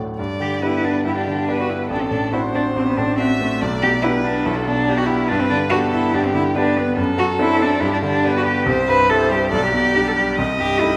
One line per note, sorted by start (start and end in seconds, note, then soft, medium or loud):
0.00 0.21 D2 soft
0.00 0.21 A2 soft
0.00 0.21 A3 soft
0.00 0.21 F#4 soft
0.19 1.03 G2 soft
0.19 0.64 D5 soft
0.40 0.75 D3 soft
0.40 0.61 G4 medium
0.62 0.81 B3 soft
0.62 0.82 D4 soft
0.62 0.86 E4 medium
0.62 0.82 G4 soft
0.62 1.05 B4 soft
0.83 1.18 B3 soft
0.83 1.05 D4 medium
1.05 1.87 G2 soft
1.05 1.16 E4 medium
1.05 1.47 G4 soft
1.17 1.27 D4 medium
1.27 1.61 D3 soft
1.27 1.62 D4 medium
1.48 1.67 B3 soft
1.48 1.67 D4 soft
1.48 1.68 G4 soft
1.48 1.89 B4 soft
1.60 1.71 F#4 medium
1.69 1.90 B3 soft
1.69 1.90 E4 soft
1.90 2.73 A1 soft
1.90 2.03 D4 medium
1.90 2.35 A4 medium
2.01 2.09 C4 medium
2.10 2.46 A2 soft
2.10 2.32 D4 medium
2.32 2.52 C4 soft
2.32 2.52 D4 soft
2.32 2.40 E4 medium
2.32 2.52 F#4 soft
2.32 3.18 C5 medium
2.54 2.88 C4 soft
2.54 2.63 D4 medium
2.76 3.58 A1 soft
2.76 2.86 C4 medium
2.87 2.98 B3 medium
2.97 3.31 A2 soft
2.97 3.16 D4 medium
3.17 3.25 C4 medium
3.17 3.38 C4 soft
3.17 3.38 D4 soft
3.17 3.38 F#4 soft
3.17 3.63 E5 medium
3.39 3.60 A3 soft
3.39 3.61 C4 soft
3.62 4.43 B1 medium
3.62 4.05 D5 medium
3.82 4.16 B2 soft
3.82 3.90 G4 medium
4.02 4.22 B3 soft
4.02 4.23 D4 soft
4.02 4.10 E4 medium
4.02 4.23 G4 soft
4.02 4.47 B4 medium
4.22 4.58 B3 soft
4.22 4.46 D4 medium
4.44 5.28 B1 medium
4.44 4.56 E4 medium
4.44 4.86 A4 medium
4.55 4.64 D4 medium
4.65 5.01 B2 soft
4.65 4.99 D4 medium
4.86 5.07 B3 soft
4.86 5.07 D4 soft
4.86 5.28 G4 medium
4.86 5.08 G4 soft
4.98 5.08 F#4 medium
5.06 5.30 B3 soft
5.06 5.29 E4 medium
5.28 6.11 G2 medium
5.28 5.41 D4 medium
5.28 5.73 B4 medium
5.39 5.48 C4 medium
5.49 5.84 D3 soft
5.49 5.57 D4 medium
5.70 5.90 B3 soft
5.70 5.91 D4 soft
5.70 5.78 F#4 medium
5.70 5.91 G4 soft
5.70 6.14 A4 medium
5.92 6.26 B3 soft
5.92 6.16 E4 medium
6.13 6.95 G2 medium
6.13 6.26 D4 medium
6.13 6.57 G4 medium
6.25 6.34 C4 medium
6.34 6.68 D3 soft
6.34 6.42 E4 medium
6.55 6.75 B3 soft
6.55 6.75 D4 soft
6.55 6.79 D4 medium
6.55 6.75 G4 soft
6.55 6.96 B4 medium
6.77 6.98 B3 soft
6.77 6.98 B3 medium
6.97 7.79 F#2 medium
6.97 7.84 A4 medium
7.18 7.52 F#3 medium
7.18 7.27 F#4 medium
7.39 7.58 C4 soft
7.39 7.59 D4 soft
7.39 7.63 E4 medium
7.39 7.59 A4 medium
7.60 7.82 C4 soft
7.60 7.82 D4 medium
7.81 8.64 G2 medium
7.81 7.92 E4 medium
7.81 8.27 G4 medium
7.93 7.97 D4 medium
8.02 8.37 D3 medium
8.02 8.35 D4 medium
8.24 8.43 B3 soft
8.24 8.44 D4 soft
8.24 8.44 G4 soft
8.24 8.66 B4 medium
8.37 8.41 F#4 medium
8.45 8.67 B3 soft
8.45 8.67 G4 medium
8.66 9.49 C2 medium
8.66 9.09 C5 medium
8.88 9.22 G2 soft
8.88 9.11 B4 medium
9.10 9.29 G3 soft
9.10 9.29 E4 soft
9.10 9.30 G4 soft
9.10 9.33 A4 medium
9.10 9.51 C5 medium
9.31 9.52 G3 soft
9.31 9.52 G4 medium
9.52 10.35 B1 medium
9.52 9.63 A4 medium
9.52 10.36 D5 medium
9.65 9.73 G4 medium
9.74 10.08 B2 soft
9.74 10.09 G4 medium
9.95 10.14 G3 soft
9.95 10.15 D4 soft
9.95 10.15 G4 soft
10.08 10.16 A4 medium
10.16 10.38 G3 soft
10.16 10.37 G4 medium
10.38 10.97 C2 medium
10.38 10.97 D#5 medium
10.59 10.93 G2 soft
10.59 10.81 G4 medium
10.80 10.97 A3 soft
10.80 10.97 D#4 soft
10.80 10.97 E4 medium
10.80 10.97 G4 soft